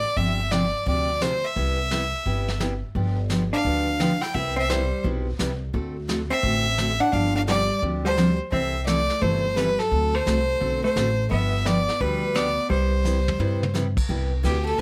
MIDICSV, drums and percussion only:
0, 0, Header, 1, 2, 480
1, 0, Start_track
1, 0, Key_signature, 0, "major"
1, 0, Tempo, 348028
1, 228, Time_signature, 4, 2, 24, 8
1, 20431, End_track
2, 0, Start_track
2, 0, Title_t, "Drums"
2, 231, Note_on_c, 9, 36, 34
2, 233, Note_on_c, 9, 25, 48
2, 369, Note_off_c, 9, 36, 0
2, 710, Note_on_c, 9, 38, 65
2, 710, Note_on_c, 9, 44, 58
2, 848, Note_off_c, 9, 38, 0
2, 848, Note_off_c, 9, 44, 0
2, 1191, Note_off_c, 9, 25, 0
2, 1191, Note_on_c, 9, 25, 41
2, 1194, Note_on_c, 9, 36, 34
2, 1332, Note_off_c, 9, 36, 0
2, 1677, Note_on_c, 9, 38, 64
2, 1677, Note_on_c, 9, 44, 61
2, 1814, Note_off_c, 9, 38, 0
2, 1814, Note_off_c, 9, 44, 0
2, 2157, Note_on_c, 9, 36, 36
2, 2159, Note_off_c, 9, 25, 0
2, 2159, Note_on_c, 9, 25, 45
2, 2295, Note_off_c, 9, 36, 0
2, 2635, Note_on_c, 9, 38, 62
2, 2635, Note_on_c, 9, 44, 54
2, 2773, Note_off_c, 9, 38, 0
2, 2773, Note_off_c, 9, 44, 0
2, 3114, Note_on_c, 9, 36, 31
2, 3118, Note_off_c, 9, 25, 0
2, 3118, Note_on_c, 9, 25, 41
2, 3252, Note_off_c, 9, 36, 0
2, 3426, Note_on_c, 9, 38, 47
2, 3564, Note_off_c, 9, 38, 0
2, 3592, Note_on_c, 9, 38, 58
2, 3592, Note_on_c, 9, 44, 53
2, 3730, Note_off_c, 9, 38, 0
2, 3730, Note_off_c, 9, 44, 0
2, 4069, Note_off_c, 9, 25, 0
2, 4069, Note_on_c, 9, 25, 54
2, 4070, Note_on_c, 9, 36, 35
2, 4208, Note_off_c, 9, 36, 0
2, 4548, Note_on_c, 9, 38, 59
2, 4548, Note_on_c, 9, 44, 58
2, 4686, Note_off_c, 9, 38, 0
2, 4686, Note_off_c, 9, 44, 0
2, 5032, Note_on_c, 9, 36, 30
2, 5034, Note_off_c, 9, 25, 0
2, 5034, Note_on_c, 9, 25, 46
2, 5170, Note_off_c, 9, 36, 0
2, 5516, Note_on_c, 9, 38, 62
2, 5516, Note_on_c, 9, 44, 53
2, 5654, Note_off_c, 9, 38, 0
2, 5654, Note_off_c, 9, 44, 0
2, 5828, Note_on_c, 9, 38, 40
2, 5966, Note_off_c, 9, 38, 0
2, 5995, Note_on_c, 9, 36, 32
2, 5996, Note_off_c, 9, 25, 0
2, 5996, Note_on_c, 9, 25, 46
2, 6133, Note_off_c, 9, 36, 0
2, 6479, Note_on_c, 9, 38, 65
2, 6479, Note_on_c, 9, 44, 62
2, 6617, Note_off_c, 9, 38, 0
2, 6617, Note_off_c, 9, 44, 0
2, 6957, Note_on_c, 9, 36, 32
2, 6958, Note_off_c, 9, 25, 0
2, 6958, Note_on_c, 9, 25, 54
2, 7095, Note_off_c, 9, 36, 0
2, 7438, Note_on_c, 9, 38, 58
2, 7438, Note_on_c, 9, 44, 67
2, 7576, Note_off_c, 9, 38, 0
2, 7576, Note_off_c, 9, 44, 0
2, 7917, Note_on_c, 9, 36, 36
2, 7921, Note_off_c, 9, 25, 0
2, 7921, Note_on_c, 9, 25, 45
2, 8055, Note_off_c, 9, 36, 0
2, 8400, Note_on_c, 9, 38, 67
2, 8400, Note_on_c, 9, 44, 66
2, 8538, Note_off_c, 9, 38, 0
2, 8538, Note_off_c, 9, 44, 0
2, 8874, Note_on_c, 9, 36, 34
2, 8877, Note_off_c, 9, 25, 0
2, 8877, Note_on_c, 9, 25, 42
2, 9012, Note_off_c, 9, 36, 0
2, 9352, Note_on_c, 9, 38, 62
2, 9352, Note_on_c, 9, 44, 64
2, 9490, Note_off_c, 9, 38, 0
2, 9490, Note_off_c, 9, 44, 0
2, 9833, Note_on_c, 9, 36, 35
2, 9837, Note_off_c, 9, 25, 0
2, 9837, Note_on_c, 9, 25, 56
2, 9971, Note_off_c, 9, 36, 0
2, 10315, Note_on_c, 9, 38, 56
2, 10315, Note_on_c, 9, 44, 59
2, 10453, Note_off_c, 9, 38, 0
2, 10453, Note_off_c, 9, 44, 0
2, 10794, Note_on_c, 9, 36, 30
2, 10799, Note_off_c, 9, 25, 0
2, 10799, Note_on_c, 9, 25, 44
2, 10932, Note_off_c, 9, 36, 0
2, 11274, Note_on_c, 9, 38, 54
2, 11274, Note_on_c, 9, 44, 53
2, 11412, Note_off_c, 9, 38, 0
2, 11412, Note_off_c, 9, 44, 0
2, 11754, Note_on_c, 9, 36, 34
2, 11755, Note_off_c, 9, 25, 0
2, 11755, Note_on_c, 9, 25, 46
2, 11892, Note_off_c, 9, 36, 0
2, 12234, Note_on_c, 9, 38, 60
2, 12234, Note_on_c, 9, 44, 67
2, 12372, Note_off_c, 9, 38, 0
2, 12372, Note_off_c, 9, 44, 0
2, 12546, Note_on_c, 9, 38, 39
2, 12684, Note_off_c, 9, 38, 0
2, 12716, Note_on_c, 9, 36, 31
2, 12719, Note_off_c, 9, 25, 0
2, 12719, Note_on_c, 9, 25, 50
2, 12854, Note_off_c, 9, 36, 0
2, 13200, Note_on_c, 9, 38, 58
2, 13200, Note_on_c, 9, 44, 59
2, 13338, Note_off_c, 9, 38, 0
2, 13338, Note_off_c, 9, 44, 0
2, 13510, Note_on_c, 9, 38, 35
2, 13648, Note_off_c, 9, 38, 0
2, 13677, Note_off_c, 9, 25, 0
2, 13677, Note_on_c, 9, 25, 51
2, 13678, Note_on_c, 9, 36, 33
2, 13816, Note_off_c, 9, 36, 0
2, 14161, Note_on_c, 9, 38, 58
2, 14161, Note_on_c, 9, 44, 58
2, 14298, Note_off_c, 9, 38, 0
2, 14298, Note_off_c, 9, 44, 0
2, 14640, Note_off_c, 9, 25, 0
2, 14640, Note_on_c, 9, 25, 46
2, 14641, Note_on_c, 9, 36, 35
2, 14779, Note_off_c, 9, 36, 0
2, 15123, Note_on_c, 9, 38, 64
2, 15123, Note_on_c, 9, 44, 62
2, 15261, Note_off_c, 9, 38, 0
2, 15261, Note_off_c, 9, 44, 0
2, 15602, Note_off_c, 9, 25, 0
2, 15602, Note_on_c, 9, 25, 49
2, 15602, Note_on_c, 9, 36, 37
2, 15740, Note_off_c, 9, 36, 0
2, 16080, Note_on_c, 9, 38, 57
2, 16080, Note_on_c, 9, 44, 52
2, 16218, Note_off_c, 9, 38, 0
2, 16218, Note_off_c, 9, 44, 0
2, 16392, Note_on_c, 9, 38, 39
2, 16530, Note_off_c, 9, 38, 0
2, 16561, Note_on_c, 9, 36, 31
2, 16563, Note_off_c, 9, 25, 0
2, 16563, Note_on_c, 9, 25, 46
2, 16699, Note_off_c, 9, 36, 0
2, 17039, Note_on_c, 9, 38, 60
2, 17039, Note_on_c, 9, 44, 55
2, 17177, Note_off_c, 9, 38, 0
2, 17177, Note_off_c, 9, 44, 0
2, 17517, Note_on_c, 9, 36, 31
2, 17518, Note_off_c, 9, 25, 0
2, 17518, Note_on_c, 9, 25, 50
2, 17655, Note_off_c, 9, 36, 0
2, 18000, Note_on_c, 9, 44, 64
2, 18000, Note_on_c, 9, 48, 45
2, 18138, Note_off_c, 9, 44, 0
2, 18138, Note_off_c, 9, 48, 0
2, 18317, Note_on_c, 9, 43, 71
2, 18455, Note_off_c, 9, 43, 0
2, 18477, Note_on_c, 9, 48, 57
2, 18615, Note_off_c, 9, 48, 0
2, 18799, Note_on_c, 9, 48, 74
2, 18854, Note_off_c, 9, 25, 0
2, 18937, Note_off_c, 9, 48, 0
2, 18958, Note_on_c, 9, 38, 52
2, 18958, Note_on_c, 9, 44, 60
2, 19096, Note_off_c, 9, 38, 0
2, 19096, Note_off_c, 9, 44, 0
2, 19267, Note_on_c, 9, 36, 78
2, 19269, Note_on_c, 9, 49, 76
2, 19405, Note_off_c, 9, 36, 0
2, 19407, Note_off_c, 9, 49, 0
2, 19435, Note_on_c, 9, 36, 24
2, 19573, Note_off_c, 9, 36, 0
2, 19916, Note_on_c, 9, 36, 21
2, 19920, Note_on_c, 9, 44, 55
2, 19920, Note_on_c, 9, 51, 74
2, 20054, Note_off_c, 9, 36, 0
2, 20057, Note_off_c, 9, 44, 0
2, 20057, Note_off_c, 9, 51, 0
2, 20230, Note_on_c, 9, 51, 46
2, 20367, Note_off_c, 9, 51, 0
2, 20431, End_track
0, 0, End_of_file